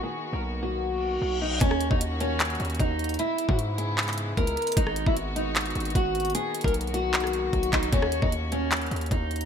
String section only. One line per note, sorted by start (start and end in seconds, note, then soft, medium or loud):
0.00 1.58 D#3 medium
0.00 1.60 A#3 medium
0.00 1.58 B3 medium
0.00 1.58 F#4 medium
1.61 3.17 D#3 medium
1.61 3.17 A#3 medium
1.61 3.17 C#4 medium
1.61 3.17 F#4 medium
3.19 4.75 C#3 medium
3.19 6.32 G#3 medium
3.19 7.89 B3 medium
3.19 4.75 E4 medium
4.77 9.45 D#3 medium
4.77 6.33 F#4 medium
6.35 7.91 A#3 medium
6.35 9.45 F#4 medium
7.93 9.45 A#3 medium
7.93 9.45 C#4 medium